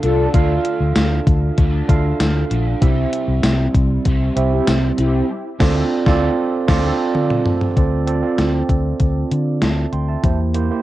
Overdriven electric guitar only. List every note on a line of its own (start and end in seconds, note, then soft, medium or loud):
0.02 0.34 A3 medium
0.02 0.34 D4 medium
0.33 1.56 D3 medium
0.33 1.58 A3 medium
0.37 1.59 D4 medium
1.57 2.50 D3 medium
1.57 2.51 A3 medium
1.57 2.49 D4 medium
2.50 2.82 A3 soft
2.50 2.81 D4 medium
2.80 4.04 C3 medium
2.80 4.05 G3 loud
2.85 4.07 C4 loud
4.05 4.98 C3 medium
4.05 4.99 G3 medium
4.05 4.97 C4 medium
4.98 5.30 G3 medium
4.98 5.29 C4 medium
5.59 5.80 D3 loud
5.59 5.82 A3 medium
5.64 5.83 D4 loud
6.06 6.27 D3 loud
6.06 6.28 A3 loud
6.06 6.29 D4 loud
6.68 6.89 D3 loud
6.68 6.90 A3 loud
6.68 6.91 D4 loud